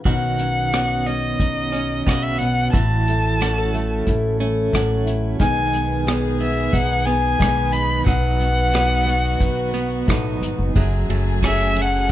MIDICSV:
0, 0, Header, 1, 7, 480
1, 0, Start_track
1, 0, Tempo, 668896
1, 42, Time_signature, 4, 2, 24, 8
1, 8696, End_track
2, 0, Start_track
2, 0, Title_t, "Violin"
2, 0, Program_c, 0, 40
2, 51, Note_on_c, 0, 78, 74
2, 764, Note_on_c, 0, 75, 76
2, 775, Note_off_c, 0, 78, 0
2, 1471, Note_off_c, 0, 75, 0
2, 1475, Note_on_c, 0, 75, 69
2, 1599, Note_on_c, 0, 76, 74
2, 1610, Note_off_c, 0, 75, 0
2, 1712, Note_on_c, 0, 78, 78
2, 1723, Note_off_c, 0, 76, 0
2, 1952, Note_off_c, 0, 78, 0
2, 1957, Note_on_c, 0, 81, 86
2, 2886, Note_off_c, 0, 81, 0
2, 3880, Note_on_c, 0, 80, 102
2, 4326, Note_off_c, 0, 80, 0
2, 4605, Note_on_c, 0, 76, 69
2, 4831, Note_on_c, 0, 78, 81
2, 4841, Note_off_c, 0, 76, 0
2, 5064, Note_on_c, 0, 80, 92
2, 5074, Note_off_c, 0, 78, 0
2, 5545, Note_on_c, 0, 83, 93
2, 5556, Note_off_c, 0, 80, 0
2, 5781, Note_off_c, 0, 83, 0
2, 5785, Note_on_c, 0, 78, 91
2, 7203, Note_off_c, 0, 78, 0
2, 8224, Note_on_c, 0, 76, 82
2, 8478, Note_on_c, 0, 78, 77
2, 8489, Note_off_c, 0, 76, 0
2, 8696, Note_off_c, 0, 78, 0
2, 8696, End_track
3, 0, Start_track
3, 0, Title_t, "String section"
3, 0, Program_c, 1, 48
3, 3863, Note_on_c, 1, 68, 72
3, 3867, Note_on_c, 1, 59, 58
3, 3871, Note_on_c, 1, 51, 64
3, 5764, Note_off_c, 1, 68, 0
3, 5785, Note_on_c, 1, 66, 75
3, 7685, Note_off_c, 1, 59, 0
3, 7687, Note_off_c, 1, 51, 0
3, 7696, Note_off_c, 1, 66, 0
3, 7709, Note_on_c, 1, 54, 66
3, 7709, Note_on_c, 1, 68, 71
3, 7711, Note_on_c, 1, 57, 61
3, 8664, Note_off_c, 1, 54, 0
3, 8664, Note_off_c, 1, 68, 0
3, 8666, Note_off_c, 1, 57, 0
3, 8666, Note_on_c, 1, 61, 61
3, 8668, Note_on_c, 1, 69, 70
3, 8669, Note_on_c, 1, 52, 68
3, 8696, Note_off_c, 1, 52, 0
3, 8696, Note_off_c, 1, 61, 0
3, 8696, Note_off_c, 1, 69, 0
3, 8696, End_track
4, 0, Start_track
4, 0, Title_t, "Clean electric guitar"
4, 0, Program_c, 2, 27
4, 40, Note_on_c, 2, 51, 56
4, 43, Note_on_c, 2, 66, 53
4, 527, Note_on_c, 2, 59, 48
4, 530, Note_on_c, 2, 61, 45
4, 532, Note_off_c, 2, 66, 0
4, 535, Note_on_c, 2, 66, 51
4, 1228, Note_off_c, 2, 61, 0
4, 1236, Note_on_c, 2, 61, 44
4, 1473, Note_off_c, 2, 59, 0
4, 1476, Note_off_c, 2, 61, 0
4, 1482, Note_off_c, 2, 66, 0
4, 1482, Note_on_c, 2, 59, 49
4, 1485, Note_on_c, 2, 61, 46
4, 1491, Note_on_c, 2, 66, 51
4, 1956, Note_off_c, 2, 66, 0
4, 1957, Note_off_c, 2, 51, 0
4, 1960, Note_on_c, 2, 52, 71
4, 1966, Note_on_c, 2, 66, 46
4, 2009, Note_off_c, 2, 59, 0
4, 2010, Note_off_c, 2, 61, 0
4, 2441, Note_off_c, 2, 66, 0
4, 2446, Note_on_c, 2, 57, 54
4, 2452, Note_on_c, 2, 61, 47
4, 2456, Note_on_c, 2, 66, 53
4, 3151, Note_off_c, 2, 61, 0
4, 3160, Note_on_c, 2, 61, 54
4, 3393, Note_off_c, 2, 57, 0
4, 3397, Note_off_c, 2, 61, 0
4, 3402, Note_on_c, 2, 57, 46
4, 3404, Note_off_c, 2, 66, 0
4, 3406, Note_on_c, 2, 61, 53
4, 3412, Note_on_c, 2, 66, 54
4, 3873, Note_off_c, 2, 52, 0
4, 3878, Note_off_c, 2, 61, 0
4, 3881, Note_on_c, 2, 51, 70
4, 3885, Note_on_c, 2, 63, 57
4, 3924, Note_off_c, 2, 57, 0
4, 3929, Note_off_c, 2, 66, 0
4, 4349, Note_off_c, 2, 51, 0
4, 4357, Note_on_c, 2, 51, 49
4, 4364, Note_on_c, 2, 59, 50
4, 5063, Note_off_c, 2, 59, 0
4, 5072, Note_on_c, 2, 59, 53
4, 5302, Note_off_c, 2, 51, 0
4, 5306, Note_off_c, 2, 59, 0
4, 5311, Note_on_c, 2, 51, 55
4, 5315, Note_on_c, 2, 59, 53
4, 5318, Note_off_c, 2, 63, 0
4, 5321, Note_on_c, 2, 63, 55
4, 5783, Note_off_c, 2, 63, 0
4, 5785, Note_off_c, 2, 51, 0
4, 5788, Note_on_c, 2, 54, 74
4, 5792, Note_on_c, 2, 63, 60
4, 5839, Note_off_c, 2, 59, 0
4, 6262, Note_off_c, 2, 54, 0
4, 6271, Note_off_c, 2, 63, 0
4, 6271, Note_on_c, 2, 54, 57
4, 6275, Note_on_c, 2, 59, 53
4, 6280, Note_on_c, 2, 63, 61
4, 6980, Note_off_c, 2, 59, 0
4, 6988, Note_on_c, 2, 59, 53
4, 7229, Note_off_c, 2, 54, 0
4, 7232, Note_off_c, 2, 59, 0
4, 7236, Note_off_c, 2, 63, 0
4, 7238, Note_on_c, 2, 54, 52
4, 7243, Note_on_c, 2, 59, 47
4, 7245, Note_on_c, 2, 63, 60
4, 7715, Note_off_c, 2, 54, 0
4, 7724, Note_on_c, 2, 54, 70
4, 7768, Note_off_c, 2, 59, 0
4, 7771, Note_off_c, 2, 63, 0
4, 7969, Note_on_c, 2, 57, 52
4, 8207, Note_off_c, 2, 57, 0
4, 8209, Note_on_c, 2, 57, 52
4, 8215, Note_on_c, 2, 61, 52
4, 8220, Note_on_c, 2, 68, 58
4, 8680, Note_off_c, 2, 54, 0
4, 8696, Note_off_c, 2, 57, 0
4, 8696, Note_off_c, 2, 61, 0
4, 8696, Note_off_c, 2, 68, 0
4, 8696, End_track
5, 0, Start_track
5, 0, Title_t, "Steel-string acoustic guitar"
5, 0, Program_c, 3, 25
5, 36, Note_on_c, 3, 47, 58
5, 40, Note_on_c, 3, 54, 46
5, 46, Note_on_c, 3, 61, 45
5, 47, Note_on_c, 3, 63, 51
5, 55, Note_on_c, 3, 66, 50
5, 286, Note_off_c, 3, 61, 0
5, 289, Note_on_c, 3, 61, 44
5, 530, Note_off_c, 3, 66, 0
5, 533, Note_on_c, 3, 66, 51
5, 772, Note_off_c, 3, 61, 0
5, 775, Note_on_c, 3, 61, 51
5, 1007, Note_off_c, 3, 63, 0
5, 1014, Note_on_c, 3, 63, 49
5, 1244, Note_off_c, 3, 61, 0
5, 1253, Note_on_c, 3, 61, 47
5, 1480, Note_off_c, 3, 47, 0
5, 1490, Note_on_c, 3, 49, 52
5, 1722, Note_off_c, 3, 49, 0
5, 1725, Note_on_c, 3, 47, 55
5, 1932, Note_off_c, 3, 54, 0
5, 1937, Note_off_c, 3, 61, 0
5, 1938, Note_off_c, 3, 63, 0
5, 1960, Note_on_c, 3, 45, 62
5, 1963, Note_off_c, 3, 47, 0
5, 2215, Note_on_c, 3, 57, 47
5, 2437, Note_off_c, 3, 66, 0
5, 2445, Note_on_c, 3, 66, 53
5, 2568, Note_off_c, 3, 66, 0
5, 2568, Note_on_c, 3, 69, 45
5, 2671, Note_off_c, 3, 57, 0
5, 2679, Note_on_c, 3, 57, 51
5, 2928, Note_on_c, 3, 64, 47
5, 3148, Note_off_c, 3, 57, 0
5, 3157, Note_on_c, 3, 57, 50
5, 3387, Note_on_c, 3, 54, 51
5, 3617, Note_off_c, 3, 64, 0
5, 3626, Note_on_c, 3, 64, 49
5, 3840, Note_off_c, 3, 54, 0
5, 3840, Note_off_c, 3, 64, 0
5, 3843, Note_off_c, 3, 45, 0
5, 3869, Note_on_c, 3, 47, 64
5, 3871, Note_on_c, 3, 56, 57
5, 3873, Note_off_c, 3, 57, 0
5, 3877, Note_on_c, 3, 59, 54
5, 3878, Note_off_c, 3, 69, 0
5, 3885, Note_on_c, 3, 68, 60
5, 4113, Note_off_c, 3, 59, 0
5, 4116, Note_on_c, 3, 59, 51
5, 4346, Note_off_c, 3, 68, 0
5, 4354, Note_on_c, 3, 68, 59
5, 4590, Note_off_c, 3, 59, 0
5, 4593, Note_on_c, 3, 59, 56
5, 4827, Note_on_c, 3, 63, 55
5, 5058, Note_off_c, 3, 59, 0
5, 5067, Note_on_c, 3, 59, 50
5, 5292, Note_off_c, 3, 56, 0
5, 5300, Note_on_c, 3, 56, 61
5, 5530, Note_off_c, 3, 63, 0
5, 5539, Note_on_c, 3, 63, 54
5, 5754, Note_off_c, 3, 63, 0
5, 5755, Note_off_c, 3, 56, 0
5, 5758, Note_off_c, 3, 59, 0
5, 5761, Note_off_c, 3, 68, 0
5, 5767, Note_off_c, 3, 47, 0
5, 5775, Note_on_c, 3, 47, 71
5, 6020, Note_on_c, 3, 59, 53
5, 6257, Note_on_c, 3, 66, 61
5, 6490, Note_off_c, 3, 59, 0
5, 6498, Note_on_c, 3, 59, 58
5, 6742, Note_on_c, 3, 63, 50
5, 6976, Note_off_c, 3, 59, 0
5, 6985, Note_on_c, 3, 59, 51
5, 7224, Note_on_c, 3, 45, 62
5, 7471, Note_off_c, 3, 45, 0
5, 7474, Note_on_c, 3, 44, 58
5, 7684, Note_off_c, 3, 63, 0
5, 7685, Note_off_c, 3, 59, 0
5, 7710, Note_off_c, 3, 47, 0
5, 7716, Note_off_c, 3, 44, 0
5, 7719, Note_on_c, 3, 42, 68
5, 7720, Note_off_c, 3, 66, 0
5, 7722, Note_on_c, 3, 68, 59
5, 7960, Note_on_c, 3, 54, 61
5, 8205, Note_on_c, 3, 61, 49
5, 8436, Note_off_c, 3, 54, 0
5, 8444, Note_on_c, 3, 54, 62
5, 8651, Note_off_c, 3, 68, 0
5, 8652, Note_off_c, 3, 54, 0
5, 8679, Note_off_c, 3, 42, 0
5, 8682, Note_off_c, 3, 61, 0
5, 8696, End_track
6, 0, Start_track
6, 0, Title_t, "Upright bass"
6, 0, Program_c, 4, 32
6, 39, Note_on_c, 4, 35, 72
6, 973, Note_off_c, 4, 35, 0
6, 1002, Note_on_c, 4, 35, 74
6, 1454, Note_off_c, 4, 35, 0
6, 1486, Note_on_c, 4, 35, 72
6, 1934, Note_off_c, 4, 35, 0
6, 1964, Note_on_c, 4, 33, 81
6, 2890, Note_off_c, 4, 33, 0
6, 2917, Note_on_c, 4, 33, 85
6, 3367, Note_off_c, 4, 33, 0
6, 3396, Note_on_c, 4, 33, 75
6, 3845, Note_off_c, 4, 33, 0
6, 3875, Note_on_c, 4, 35, 86
6, 4802, Note_off_c, 4, 35, 0
6, 4831, Note_on_c, 4, 35, 84
6, 5280, Note_off_c, 4, 35, 0
6, 5311, Note_on_c, 4, 35, 89
6, 5761, Note_off_c, 4, 35, 0
6, 5789, Note_on_c, 4, 35, 92
6, 6722, Note_off_c, 4, 35, 0
6, 6752, Note_on_c, 4, 35, 81
6, 7205, Note_off_c, 4, 35, 0
6, 7235, Note_on_c, 4, 35, 83
6, 7461, Note_off_c, 4, 35, 0
6, 7470, Note_on_c, 4, 32, 64
6, 7581, Note_off_c, 4, 32, 0
6, 7596, Note_on_c, 4, 30, 63
6, 7704, Note_off_c, 4, 30, 0
6, 7720, Note_on_c, 4, 30, 86
6, 7944, Note_off_c, 4, 30, 0
6, 7957, Note_on_c, 4, 30, 72
6, 8649, Note_off_c, 4, 30, 0
6, 8696, End_track
7, 0, Start_track
7, 0, Title_t, "Drums"
7, 39, Note_on_c, 9, 36, 76
7, 40, Note_on_c, 9, 42, 50
7, 111, Note_off_c, 9, 36, 0
7, 112, Note_off_c, 9, 42, 0
7, 278, Note_on_c, 9, 42, 41
7, 350, Note_off_c, 9, 42, 0
7, 519, Note_on_c, 9, 42, 48
7, 530, Note_on_c, 9, 37, 72
7, 591, Note_off_c, 9, 42, 0
7, 602, Note_off_c, 9, 37, 0
7, 762, Note_on_c, 9, 42, 36
7, 834, Note_off_c, 9, 42, 0
7, 1002, Note_on_c, 9, 36, 53
7, 1004, Note_on_c, 9, 42, 50
7, 1074, Note_off_c, 9, 36, 0
7, 1076, Note_off_c, 9, 42, 0
7, 1247, Note_on_c, 9, 42, 40
7, 1319, Note_off_c, 9, 42, 0
7, 1484, Note_on_c, 9, 36, 55
7, 1489, Note_on_c, 9, 42, 59
7, 1500, Note_on_c, 9, 37, 70
7, 1556, Note_off_c, 9, 36, 0
7, 1561, Note_off_c, 9, 42, 0
7, 1572, Note_off_c, 9, 37, 0
7, 1729, Note_on_c, 9, 42, 45
7, 1800, Note_off_c, 9, 42, 0
7, 1963, Note_on_c, 9, 36, 76
7, 1968, Note_on_c, 9, 42, 60
7, 2035, Note_off_c, 9, 36, 0
7, 2040, Note_off_c, 9, 42, 0
7, 2208, Note_on_c, 9, 42, 43
7, 2279, Note_off_c, 9, 42, 0
7, 2444, Note_on_c, 9, 42, 64
7, 2455, Note_on_c, 9, 37, 75
7, 2516, Note_off_c, 9, 42, 0
7, 2527, Note_off_c, 9, 37, 0
7, 2685, Note_on_c, 9, 42, 40
7, 2757, Note_off_c, 9, 42, 0
7, 2919, Note_on_c, 9, 36, 53
7, 2920, Note_on_c, 9, 42, 58
7, 2991, Note_off_c, 9, 36, 0
7, 2992, Note_off_c, 9, 42, 0
7, 3160, Note_on_c, 9, 42, 42
7, 3231, Note_off_c, 9, 42, 0
7, 3397, Note_on_c, 9, 36, 52
7, 3397, Note_on_c, 9, 42, 54
7, 3408, Note_on_c, 9, 37, 74
7, 3469, Note_off_c, 9, 36, 0
7, 3469, Note_off_c, 9, 42, 0
7, 3480, Note_off_c, 9, 37, 0
7, 3639, Note_on_c, 9, 42, 48
7, 3711, Note_off_c, 9, 42, 0
7, 3872, Note_on_c, 9, 42, 59
7, 3875, Note_on_c, 9, 36, 72
7, 3944, Note_off_c, 9, 42, 0
7, 3946, Note_off_c, 9, 36, 0
7, 4115, Note_on_c, 9, 42, 42
7, 4187, Note_off_c, 9, 42, 0
7, 4355, Note_on_c, 9, 42, 53
7, 4366, Note_on_c, 9, 37, 84
7, 4427, Note_off_c, 9, 42, 0
7, 4438, Note_off_c, 9, 37, 0
7, 4593, Note_on_c, 9, 42, 38
7, 4665, Note_off_c, 9, 42, 0
7, 4830, Note_on_c, 9, 36, 58
7, 4833, Note_on_c, 9, 42, 59
7, 4902, Note_off_c, 9, 36, 0
7, 4904, Note_off_c, 9, 42, 0
7, 5080, Note_on_c, 9, 42, 43
7, 5151, Note_off_c, 9, 42, 0
7, 5310, Note_on_c, 9, 36, 57
7, 5316, Note_on_c, 9, 42, 58
7, 5327, Note_on_c, 9, 37, 78
7, 5382, Note_off_c, 9, 36, 0
7, 5388, Note_off_c, 9, 42, 0
7, 5399, Note_off_c, 9, 37, 0
7, 5545, Note_on_c, 9, 42, 44
7, 5617, Note_off_c, 9, 42, 0
7, 5787, Note_on_c, 9, 36, 74
7, 5787, Note_on_c, 9, 42, 57
7, 5858, Note_off_c, 9, 42, 0
7, 5859, Note_off_c, 9, 36, 0
7, 6031, Note_on_c, 9, 42, 44
7, 6103, Note_off_c, 9, 42, 0
7, 6269, Note_on_c, 9, 42, 59
7, 6279, Note_on_c, 9, 37, 81
7, 6340, Note_off_c, 9, 42, 0
7, 6351, Note_off_c, 9, 37, 0
7, 6514, Note_on_c, 9, 42, 47
7, 6586, Note_off_c, 9, 42, 0
7, 6749, Note_on_c, 9, 36, 66
7, 6753, Note_on_c, 9, 42, 65
7, 6821, Note_off_c, 9, 36, 0
7, 6825, Note_off_c, 9, 42, 0
7, 6992, Note_on_c, 9, 42, 47
7, 7064, Note_off_c, 9, 42, 0
7, 7234, Note_on_c, 9, 36, 62
7, 7238, Note_on_c, 9, 42, 64
7, 7249, Note_on_c, 9, 37, 81
7, 7306, Note_off_c, 9, 36, 0
7, 7310, Note_off_c, 9, 42, 0
7, 7320, Note_off_c, 9, 37, 0
7, 7482, Note_on_c, 9, 42, 47
7, 7554, Note_off_c, 9, 42, 0
7, 7720, Note_on_c, 9, 36, 82
7, 7720, Note_on_c, 9, 51, 60
7, 7791, Note_off_c, 9, 36, 0
7, 7792, Note_off_c, 9, 51, 0
7, 7965, Note_on_c, 9, 51, 45
7, 8036, Note_off_c, 9, 51, 0
7, 8199, Note_on_c, 9, 51, 63
7, 8200, Note_on_c, 9, 36, 61
7, 8210, Note_on_c, 9, 37, 81
7, 8271, Note_off_c, 9, 36, 0
7, 8271, Note_off_c, 9, 51, 0
7, 8282, Note_off_c, 9, 37, 0
7, 8442, Note_on_c, 9, 51, 40
7, 8514, Note_off_c, 9, 51, 0
7, 8696, End_track
0, 0, End_of_file